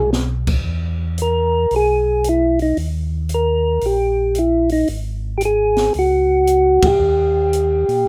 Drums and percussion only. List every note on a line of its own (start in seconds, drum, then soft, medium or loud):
0.13 snare medium
0.47 kick medium
0.47 crash medium
1.18 closed hi-hat medium
1.71 open hi-hat soft
2.24 closed hi-hat soft
2.59 open hi-hat soft
2.77 open hi-hat soft
3.29 closed hi-hat soft
3.81 open hi-hat soft
4.35 closed hi-hat medium
4.69 open hi-hat soft
4.88 open hi-hat soft
5.41 closed hi-hat medium
5.76 snare soft
5.76 open hi-hat soft
5.94 open hi-hat soft
6.47 closed hi-hat medium
6.82 kick medium
6.82 ride medium
7.53 closed hi-hat medium
7.89 open hi-hat soft